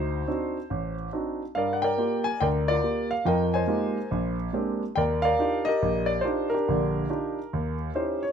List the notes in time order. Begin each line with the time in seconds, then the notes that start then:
Already playing: D2 D#4 F#4 C5
0.28 C4 D4 D#4 F#4
0.70 A1
1.13 C4 D4 D#4 F#4
1.55 G2 A#4 D5 F5
1.73 F#5
1.82 A#4 D5 G5
1.97 A#3 F4 G4
2.24 G#5
2.40 D2 A#4 D5 G5
2.68 F4 A#4 D5
2.83 A#3 F4 G4
3.11 F5
3.25 F2 F3 A#4 D#5 G5
3.54 C5 D#5 G#5
3.67 G#3 A#3 D#4 F4 G4
4.11 A#1
4.53 G#3 A#3 C4 D4 G4
4.96 D#2 A#4 D5 G5
5.22 A#4 D5 F5
5.39 D4 D#4 F4 G4
5.65 G4 A#4 D#5
5.82 A#1
6.06 D5
6.21 D4 D#4 F4 C5
6.25 G4
6.50 A#4
6.54 D4 G4
6.68 A#1 D3
7.10 D4 D#4 F4 G4
7.53 D#2
7.95 C#4 D#4 E4 G4 C5
8.23 C#5